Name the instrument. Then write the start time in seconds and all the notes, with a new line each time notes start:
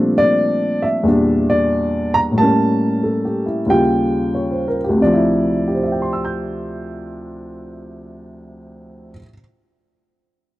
upright piano
Already playing: A#2 F3 G3 A3 C4 D4
0.18 D5
0.82 E5
1.03 E2 A#2 G3
1.08 D4
1.50 D5
2.14 A#5
2.32 A2 G3
2.38 A#3 A5
2.43 C#4
3.03 A4
3.25 G4
3.46 E4
3.66 D#2 C#3 G3 G5
3.71 F4
4.35 C#5
4.51 C5
4.68 A#4
4.84 G4
4.89 D2
4.97 C3
5.02 F3 D5
5.13 E4
5.68 G4
5.75 C5
5.84 E5
5.92 G5
6.02 C6
6.13 E6
6.25 G6